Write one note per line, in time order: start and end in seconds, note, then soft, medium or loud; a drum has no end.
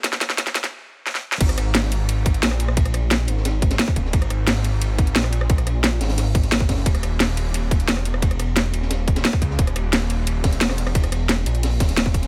0.00 0.54 E1 medium
0.04 snare medium
0.04 closed hi-hat loud
0.13 snare medium
0.13 closed hi-hat soft
0.21 snare medium
0.21 closed hi-hat medium
0.30 snare medium
0.38 snare medium
0.38 closed hi-hat loud
0.47 snare medium
0.55 0.72 D#2 loud
0.55 snare loud
0.55 closed hi-hat medium
0.64 snare medium
0.64 closed hi-hat soft
1.06 snare medium
1.15 snare medium
1.32 snare medium
1.41 1.56 G#1 loud
1.41 kick loud
1.41 closed hi-hat loud
1.41 crash loud
1.41 ride medium
1.49 cross-stick soft
1.49 closed hi-hat soft
1.58 2.41 G#1 loud
1.58 cross-stick soft
1.58 closed hi-hat medium
1.58 ride medium
1.74 snare loud
1.74 closed hi-hat loud
1.74 open hi-hat medium
1.83 snare medium
1.92 closed hi-hat medium
1.92 ride medium
2.09 closed hi-hat medium
2.09 ride medium
2.26 kick loud
2.26 closed hi-hat medium
2.26 ride medium
2.34 closed hi-hat soft
2.43 3.27 A#1 medium
2.43 snare loud
2.43 closed hi-hat loud
2.43 ride medium
2.51 cross-stick soft
2.60 closed hi-hat medium
2.60 ride medium
2.68 cross-stick medium
2.77 kick loud
2.77 closed hi-hat medium
2.77 ride medium
2.85 cross-stick soft
2.85 closed hi-hat soft
2.94 cross-stick soft
2.94 closed hi-hat medium
2.94 ride medium
3.10 snare loud
3.10 closed hi-hat medium
3.10 ride medium
3.28 3.78 G#1 loud
3.28 closed hi-hat medium
3.28 ride medium
3.37 snare medium
3.45 snare loud
3.45 closed hi-hat loud
3.45 ride medium
3.62 kick loud
3.62 closed hi-hat medium
3.62 ride medium
3.71 snare loud
3.71 closed hi-hat soft
3.71 ride medium
3.79 snare loud
3.79 closed hi-hat medium
3.88 kick loud
3.88 ride medium
3.96 4.12 D#1 loud
3.96 kick medium
3.96 closed hi-hat medium
3.96 ride medium
4.05 snare soft
4.13 4.29 G#1 loud
4.13 kick loud
4.13 closed hi-hat medium
4.13 ride loud
4.22 cross-stick soft
4.22 closed hi-hat soft
4.30 5.14 G#1 loud
4.30 cross-stick soft
4.30 closed hi-hat medium
4.30 ride medium
4.47 snare loud
4.47 closed hi-hat medium
4.47 open hi-hat medium
4.56 snare medium
4.64 closed hi-hat medium
4.64 ride medium
4.82 closed hi-hat medium
4.82 ride medium
4.98 kick loud
4.98 closed hi-hat medium
4.98 ride medium
5.07 closed hi-hat soft
5.16 5.99 A#1 loud
5.16 snare loud
5.16 closed hi-hat medium
5.16 ride loud
5.24 cross-stick soft
5.32 closed hi-hat medium
5.32 ride medium
5.41 cross-stick medium
5.49 kick loud
5.49 closed hi-hat medium
5.49 ride medium
5.58 cross-stick soft
5.58 closed hi-hat soft
5.67 cross-stick soft
5.67 closed hi-hat medium
5.67 ride medium
5.83 snare loud
5.83 closed hi-hat medium
5.83 ride medium
6.01 6.60 G#1 loud
6.01 snare loud
6.01 closed hi-hat medium
6.01 open hi-hat medium
6.09 snare loud
6.09 open hi-hat medium
6.17 snare loud
6.17 closed hi-hat medium
6.17 open hi-hat medium
6.35 kick loud
6.35 closed hi-hat medium
6.35 ride medium
6.43 snare soft
6.43 closed hi-hat soft
6.51 snare loud
6.51 closed hi-hat medium
6.51 ride loud
6.60 6.85 G1 loud
6.60 kick loud
6.69 kick medium
6.69 snare loud
6.69 closed hi-hat medium
6.69 open hi-hat medium
6.78 snare medium
6.86 7.02 D#1 loud
6.86 kick loud
6.86 closed hi-hat medium
6.86 ride medium
6.95 cross-stick soft
6.95 closed hi-hat soft
7.03 7.87 D#1 loud
7.03 cross-stick soft
7.03 closed hi-hat medium
7.03 ride medium
7.20 snare loud
7.20 closed hi-hat medium
7.20 open hi-hat medium
7.29 snare medium
7.37 closed hi-hat medium
7.37 ride medium
7.54 closed hi-hat medium
7.54 ride medium
7.71 kick loud
7.71 closed hi-hat medium
7.71 ride medium
7.80 closed hi-hat soft
7.88 8.72 E1 loud
7.88 snare loud
7.88 closed hi-hat medium
7.88 ride medium
7.97 cross-stick soft
8.05 closed hi-hat medium
8.05 ride medium
8.14 cross-stick medium
8.22 kick loud
8.22 closed hi-hat medium
8.22 ride medium
8.31 cross-stick soft
8.31 closed hi-hat soft
8.39 cross-stick soft
8.39 closed hi-hat medium
8.39 ride medium
8.56 snare loud
8.56 closed hi-hat medium
8.56 ride medium
8.74 9.23 D#1 loud
8.74 closed hi-hat medium
8.74 ride medium
8.82 snare medium
8.90 snare loud
8.90 closed hi-hat medium
8.90 ride medium
9.07 kick loud
9.07 closed hi-hat medium
9.07 ride medium
9.16 snare loud
9.16 closed hi-hat soft
9.16 ride medium
9.25 snare loud
9.25 closed hi-hat medium
9.33 kick loud
9.33 ride medium
9.42 9.57 C#2 loud
9.42 kick medium
9.42 closed hi-hat medium
9.42 ride medium
9.50 snare medium
9.59 9.74 D#1 loud
9.59 kick loud
9.59 closed hi-hat medium
9.59 ride medium
9.67 cross-stick soft
9.67 closed hi-hat soft
9.76 10.60 D#1 loud
9.76 cross-stick soft
9.76 closed hi-hat medium
9.76 ride medium
9.93 snare loud
9.93 closed hi-hat medium
9.93 open hi-hat medium
10.01 snare medium
10.10 closed hi-hat medium
10.10 ride medium
10.27 closed hi-hat loud
10.27 ride medium
10.44 kick loud
10.44 snare loud
10.44 closed hi-hat medium
10.44 open hi-hat medium
10.52 snare soft
10.52 closed hi-hat soft
10.61 11.45 E1 loud
10.61 snare loud
10.61 closed hi-hat loud
10.61 ride medium
10.69 cross-stick soft
10.69 snare loud
10.69 open hi-hat medium
10.78 snare medium
10.78 closed hi-hat medium
10.87 cross-stick medium
10.87 ride medium
10.95 kick loud
10.95 closed hi-hat medium
10.95 ride medium
11.04 cross-stick soft
11.04 closed hi-hat soft
11.12 cross-stick soft
11.12 closed hi-hat medium
11.12 ride medium
11.29 snare loud
11.29 closed hi-hat loud
11.29 ride medium
11.46 11.79 A#1 loud
11.46 closed hi-hat medium
11.46 ride medium
11.55 closed hi-hat soft
11.63 snare loud
11.63 closed hi-hat loud
11.63 open hi-hat medium
11.80 12.27 D#1 loud
11.80 kick loud
11.80 snare medium
11.80 closed hi-hat medium
11.80 open hi-hat medium
11.89 snare medium
11.89 closed hi-hat soft
11.97 snare loud
11.97 closed hi-hat loud
11.97 ride loud
12.06 kick loud
12.14 kick medium
12.14 closed hi-hat medium
12.14 ride medium
12.22 snare soft
12.22 closed hi-hat soft